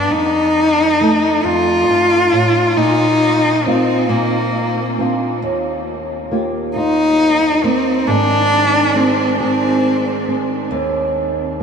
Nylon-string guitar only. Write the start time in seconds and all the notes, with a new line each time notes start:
Already playing: G2 F4
0.11 F2
1.01 A3 D#4 A4
1.44 F2
1.88 G2
2.32 A2
2.76 A#2
3.66 A#3 D#4 F4
4.09 A#2
4.99 C4 D4 F4
5.42 D#2
6.31 A#3 F4 G4
6.76 F4
7.64 A#3
8.07 G#2 D#3 C4 G#4
8.95 C4 G#4
9.40 G#4
10.28 C4
10.71 D#2
11.60 A#3